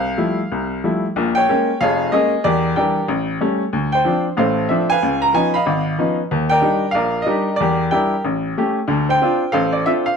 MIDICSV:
0, 0, Header, 1, 2, 480
1, 0, Start_track
1, 0, Tempo, 322061
1, 1726, Time_signature, 4, 2, 24, 8
1, 15156, End_track
2, 0, Start_track
2, 0, Title_t, "Upright piano"
2, 0, Program_c, 0, 0
2, 0, Note_on_c, 0, 36, 68
2, 0, Note_on_c, 0, 77, 97
2, 210, Note_off_c, 0, 36, 0
2, 262, Note_on_c, 0, 57, 50
2, 263, Note_on_c, 0, 53, 55
2, 265, Note_on_c, 0, 55, 46
2, 279, Note_on_c, 0, 64, 63
2, 585, Note_off_c, 0, 57, 0
2, 586, Note_off_c, 0, 53, 0
2, 587, Note_off_c, 0, 55, 0
2, 594, Note_off_c, 0, 64, 0
2, 770, Note_on_c, 0, 36, 61
2, 1180, Note_off_c, 0, 36, 0
2, 1183, Note_off_c, 0, 77, 0
2, 1251, Note_on_c, 0, 53, 50
2, 1251, Note_on_c, 0, 55, 46
2, 1260, Note_on_c, 0, 57, 46
2, 1265, Note_on_c, 0, 64, 55
2, 1560, Note_off_c, 0, 53, 0
2, 1560, Note_off_c, 0, 55, 0
2, 1565, Note_off_c, 0, 57, 0
2, 1567, Note_off_c, 0, 64, 0
2, 1731, Note_on_c, 0, 34, 75
2, 1731, Note_on_c, 0, 46, 70
2, 2011, Note_on_c, 0, 79, 100
2, 2048, Note_on_c, 0, 73, 71
2, 2140, Note_off_c, 0, 46, 0
2, 2141, Note_off_c, 0, 34, 0
2, 2218, Note_on_c, 0, 56, 53
2, 2224, Note_on_c, 0, 58, 57
2, 2235, Note_on_c, 0, 61, 62
2, 2523, Note_off_c, 0, 56, 0
2, 2527, Note_off_c, 0, 58, 0
2, 2532, Note_off_c, 0, 61, 0
2, 2636, Note_off_c, 0, 79, 0
2, 2692, Note_on_c, 0, 77, 96
2, 2694, Note_on_c, 0, 41, 73
2, 2700, Note_off_c, 0, 73, 0
2, 2709, Note_on_c, 0, 29, 67
2, 2723, Note_on_c, 0, 73, 63
2, 2724, Note_on_c, 0, 68, 64
2, 3102, Note_off_c, 0, 41, 0
2, 3110, Note_off_c, 0, 29, 0
2, 3159, Note_on_c, 0, 75, 78
2, 3167, Note_on_c, 0, 56, 56
2, 3174, Note_on_c, 0, 58, 52
2, 3176, Note_off_c, 0, 68, 0
2, 3177, Note_on_c, 0, 61, 63
2, 3183, Note_off_c, 0, 77, 0
2, 3198, Note_on_c, 0, 68, 62
2, 3477, Note_off_c, 0, 56, 0
2, 3481, Note_off_c, 0, 58, 0
2, 3483, Note_off_c, 0, 61, 0
2, 3604, Note_off_c, 0, 73, 0
2, 3629, Note_off_c, 0, 68, 0
2, 3639, Note_on_c, 0, 74, 95
2, 3644, Note_on_c, 0, 40, 80
2, 3657, Note_off_c, 0, 75, 0
2, 3658, Note_on_c, 0, 67, 58
2, 3667, Note_on_c, 0, 70, 60
2, 4056, Note_off_c, 0, 40, 0
2, 4105, Note_off_c, 0, 70, 0
2, 4113, Note_off_c, 0, 74, 0
2, 4113, Note_on_c, 0, 79, 70
2, 4115, Note_on_c, 0, 52, 58
2, 4123, Note_on_c, 0, 55, 48
2, 4128, Note_on_c, 0, 62, 57
2, 4128, Note_on_c, 0, 70, 60
2, 4135, Note_on_c, 0, 74, 62
2, 4431, Note_off_c, 0, 52, 0
2, 4435, Note_off_c, 0, 55, 0
2, 4438, Note_off_c, 0, 62, 0
2, 4552, Note_off_c, 0, 67, 0
2, 4565, Note_off_c, 0, 79, 0
2, 4573, Note_off_c, 0, 70, 0
2, 4577, Note_off_c, 0, 74, 0
2, 4598, Note_on_c, 0, 33, 72
2, 5012, Note_off_c, 0, 33, 0
2, 5078, Note_on_c, 0, 55, 53
2, 5081, Note_on_c, 0, 57, 51
2, 5088, Note_on_c, 0, 61, 61
2, 5392, Note_off_c, 0, 55, 0
2, 5393, Note_off_c, 0, 57, 0
2, 5397, Note_off_c, 0, 61, 0
2, 5556, Note_on_c, 0, 38, 75
2, 5847, Note_on_c, 0, 79, 82
2, 5885, Note_on_c, 0, 72, 61
2, 5971, Note_off_c, 0, 38, 0
2, 6033, Note_on_c, 0, 53, 59
2, 6037, Note_on_c, 0, 60, 53
2, 6054, Note_on_c, 0, 62, 64
2, 6298, Note_off_c, 0, 79, 0
2, 6349, Note_off_c, 0, 53, 0
2, 6351, Note_off_c, 0, 60, 0
2, 6359, Note_off_c, 0, 62, 0
2, 6511, Note_on_c, 0, 45, 68
2, 6518, Note_on_c, 0, 33, 72
2, 6522, Note_on_c, 0, 77, 71
2, 6523, Note_off_c, 0, 72, 0
2, 6545, Note_on_c, 0, 72, 65
2, 6557, Note_on_c, 0, 69, 55
2, 6928, Note_off_c, 0, 45, 0
2, 6931, Note_off_c, 0, 33, 0
2, 6969, Note_off_c, 0, 77, 0
2, 6987, Note_on_c, 0, 76, 72
2, 7011, Note_on_c, 0, 60, 51
2, 7014, Note_on_c, 0, 53, 61
2, 7019, Note_on_c, 0, 62, 57
2, 7266, Note_off_c, 0, 76, 0
2, 7297, Note_on_c, 0, 80, 100
2, 7318, Note_off_c, 0, 60, 0
2, 7318, Note_on_c, 0, 71, 64
2, 7319, Note_off_c, 0, 53, 0
2, 7322, Note_off_c, 0, 62, 0
2, 7329, Note_on_c, 0, 77, 68
2, 7434, Note_off_c, 0, 72, 0
2, 7440, Note_off_c, 0, 69, 0
2, 7493, Note_on_c, 0, 37, 74
2, 7777, Note_on_c, 0, 82, 99
2, 7790, Note_off_c, 0, 80, 0
2, 7899, Note_off_c, 0, 37, 0
2, 7955, Note_on_c, 0, 59, 53
2, 7958, Note_on_c, 0, 53, 61
2, 7967, Note_on_c, 0, 80, 87
2, 7968, Note_on_c, 0, 61, 53
2, 7969, Note_off_c, 0, 82, 0
2, 7977, Note_on_c, 0, 63, 63
2, 8206, Note_off_c, 0, 71, 0
2, 8212, Note_off_c, 0, 77, 0
2, 8254, Note_on_c, 0, 83, 87
2, 8265, Note_off_c, 0, 80, 0
2, 8269, Note_off_c, 0, 59, 0
2, 8271, Note_off_c, 0, 53, 0
2, 8271, Note_on_c, 0, 75, 64
2, 8275, Note_on_c, 0, 77, 70
2, 8276, Note_off_c, 0, 61, 0
2, 8281, Note_off_c, 0, 63, 0
2, 8438, Note_on_c, 0, 32, 75
2, 8851, Note_off_c, 0, 32, 0
2, 8922, Note_on_c, 0, 53, 55
2, 8922, Note_on_c, 0, 59, 53
2, 8927, Note_on_c, 0, 61, 47
2, 8933, Note_on_c, 0, 63, 58
2, 9154, Note_off_c, 0, 83, 0
2, 9163, Note_off_c, 0, 75, 0
2, 9165, Note_off_c, 0, 77, 0
2, 9233, Note_off_c, 0, 53, 0
2, 9233, Note_off_c, 0, 59, 0
2, 9235, Note_off_c, 0, 61, 0
2, 9239, Note_off_c, 0, 63, 0
2, 9408, Note_on_c, 0, 39, 76
2, 9680, Note_on_c, 0, 79, 100
2, 9703, Note_on_c, 0, 70, 73
2, 9708, Note_on_c, 0, 74, 62
2, 9817, Note_off_c, 0, 39, 0
2, 9860, Note_on_c, 0, 55, 59
2, 9866, Note_on_c, 0, 62, 54
2, 9873, Note_on_c, 0, 63, 60
2, 10182, Note_off_c, 0, 55, 0
2, 10185, Note_off_c, 0, 62, 0
2, 10188, Note_off_c, 0, 63, 0
2, 10302, Note_on_c, 0, 77, 94
2, 10307, Note_off_c, 0, 79, 0
2, 10336, Note_off_c, 0, 74, 0
2, 10346, Note_off_c, 0, 70, 0
2, 10350, Note_on_c, 0, 34, 68
2, 10359, Note_on_c, 0, 74, 70
2, 10368, Note_on_c, 0, 70, 67
2, 10761, Note_on_c, 0, 75, 76
2, 10767, Note_off_c, 0, 34, 0
2, 10815, Note_off_c, 0, 70, 0
2, 10824, Note_on_c, 0, 55, 60
2, 10824, Note_on_c, 0, 62, 51
2, 10827, Note_off_c, 0, 77, 0
2, 10828, Note_on_c, 0, 63, 60
2, 10835, Note_on_c, 0, 67, 53
2, 10837, Note_on_c, 0, 70, 57
2, 11144, Note_off_c, 0, 55, 0
2, 11144, Note_off_c, 0, 62, 0
2, 11146, Note_off_c, 0, 63, 0
2, 11249, Note_off_c, 0, 74, 0
2, 11271, Note_on_c, 0, 74, 88
2, 11284, Note_off_c, 0, 67, 0
2, 11285, Note_off_c, 0, 70, 0
2, 11297, Note_off_c, 0, 75, 0
2, 11331, Note_on_c, 0, 40, 71
2, 11342, Note_on_c, 0, 70, 58
2, 11343, Note_on_c, 0, 67, 63
2, 11738, Note_off_c, 0, 40, 0
2, 11788, Note_on_c, 0, 79, 82
2, 11791, Note_off_c, 0, 74, 0
2, 11799, Note_on_c, 0, 55, 61
2, 11802, Note_on_c, 0, 62, 56
2, 11808, Note_on_c, 0, 64, 62
2, 11809, Note_off_c, 0, 70, 0
2, 11832, Note_on_c, 0, 70, 59
2, 11841, Note_on_c, 0, 74, 53
2, 12111, Note_off_c, 0, 55, 0
2, 12113, Note_off_c, 0, 62, 0
2, 12116, Note_off_c, 0, 64, 0
2, 12233, Note_off_c, 0, 67, 0
2, 12241, Note_off_c, 0, 79, 0
2, 12264, Note_off_c, 0, 70, 0
2, 12269, Note_off_c, 0, 74, 0
2, 12290, Note_on_c, 0, 33, 67
2, 12698, Note_off_c, 0, 33, 0
2, 12784, Note_on_c, 0, 57, 60
2, 12787, Note_on_c, 0, 61, 50
2, 12790, Note_on_c, 0, 67, 64
2, 13084, Note_off_c, 0, 57, 0
2, 13086, Note_off_c, 0, 61, 0
2, 13087, Note_off_c, 0, 67, 0
2, 13229, Note_on_c, 0, 50, 78
2, 13234, Note_on_c, 0, 38, 70
2, 13549, Note_on_c, 0, 72, 61
2, 13566, Note_on_c, 0, 79, 92
2, 13647, Note_off_c, 0, 50, 0
2, 13650, Note_off_c, 0, 38, 0
2, 13741, Note_on_c, 0, 60, 65
2, 13741, Note_on_c, 0, 62, 55
2, 13749, Note_on_c, 0, 65, 68
2, 14043, Note_off_c, 0, 60, 0
2, 14043, Note_off_c, 0, 62, 0
2, 14047, Note_off_c, 0, 65, 0
2, 14188, Note_off_c, 0, 72, 0
2, 14191, Note_on_c, 0, 77, 87
2, 14200, Note_on_c, 0, 69, 71
2, 14211, Note_on_c, 0, 72, 63
2, 14215, Note_on_c, 0, 33, 76
2, 14238, Note_off_c, 0, 79, 0
2, 14468, Note_off_c, 0, 77, 0
2, 14493, Note_on_c, 0, 74, 79
2, 14621, Note_off_c, 0, 33, 0
2, 14669, Note_off_c, 0, 74, 0
2, 14693, Note_on_c, 0, 76, 84
2, 14704, Note_on_c, 0, 62, 50
2, 14707, Note_on_c, 0, 60, 56
2, 14714, Note_on_c, 0, 65, 61
2, 14768, Note_off_c, 0, 76, 0
2, 14991, Note_on_c, 0, 77, 85
2, 15005, Note_off_c, 0, 62, 0
2, 15007, Note_off_c, 0, 60, 0
2, 15010, Note_off_c, 0, 65, 0
2, 15103, Note_off_c, 0, 69, 0
2, 15108, Note_off_c, 0, 72, 0
2, 15156, Note_off_c, 0, 77, 0
2, 15156, End_track
0, 0, End_of_file